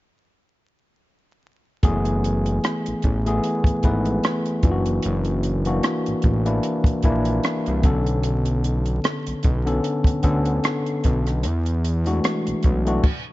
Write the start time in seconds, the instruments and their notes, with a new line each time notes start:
1.83 analog synth bass F#1, tine electric piano E3 A3 B3 G#4, kick, closed hi-hat
2.05 closed hi-hat
2.24 closed hi-hat
2.46 closed hi-hat
2.64 cross-stick, closed hi-hat
2.86 analog synth bass A1, closed hi-hat
3.02 analog synth bass A1, kick, closed hi-hat
3.26 tine electric piano E3 A3 B3 G#4, closed hi-hat
3.44 closed hi-hat
3.64 analog synth bass G#1, kick, closed hi-hat
3.83 analog synth bass G#1, tine electric piano E3 A3 B3 B4, kick, closed hi-hat
4.05 closed hi-hat
4.23 cross-stick, closed hi-hat
4.46 closed hi-hat
4.63 analog synth bass F#1, tine electric piano E3 A#3 D4 F4, kick, closed hi-hat
4.71 tine electric piano F#4
4.86 closed hi-hat
5.03 analog synth bass F#1, closed hi-hat
5.25 closed hi-hat
5.43 closed hi-hat
5.65 tine electric piano E3 A#3 D4 F#4, closed hi-hat
5.83 cross-stick, closed hi-hat
6.06 analog synth bass A1, closed hi-hat
6.22 analog synth bass A1, kick, closed hi-hat
6.45 tine electric piano E3 A#3 D4 E4, closed hi-hat
6.63 closed hi-hat
6.84 analog synth bass A#1, kick, closed hi-hat
7.03 analog synth bass A#1, tine electric piano E3 A#3 D4 E4, kick, closed hi-hat
7.25 closed hi-hat
7.43 cross-stick, closed hi-hat
7.66 analog synth bass C2, closed hi-hat
7.83 analog synth bass B1, tine electric piano C#3 B3 C#4 A4, kick, closed hi-hat
7.90 tine electric piano D3
8.06 closed hi-hat
8.23 closed hi-hat
8.45 closed hi-hat
8.64 closed hi-hat
8.86 closed hi-hat
9.04 cross-stick, closed hi-hat
9.26 analog synth bass B1, closed hi-hat
9.43 analog synth bass B1, kick, closed hi-hat
9.65 tine electric piano D3 B3 C#4 A4, closed hi-hat
9.84 closed hi-hat
10.04 analog synth bass D2, kick, closed hi-hat
10.23 analog synth bass D2, tine electric piano D3 B3 C#4 A4, kick, closed hi-hat
10.45 closed hi-hat
10.64 cross-stick, closed hi-hat
10.86 closed hi-hat
11.04 analog synth bass B1, kick, closed hi-hat
11.26 cross-stick, closed hi-hat
11.43 analog synth bass E2, closed hi-hat
11.66 closed hi-hat
11.85 closed hi-hat
12.06 tine electric piano E3 G#3 D4 F#4, closed hi-hat
12.12 tine electric piano A3
12.24 cross-stick, closed hi-hat
12.47 analog synth bass B1, closed hi-hat
12.63 analog synth bass B1, kick, closed hi-hat
12.86 tine electric piano E3 A3 D4 F#4, closed hi-hat
13.03 kick, crash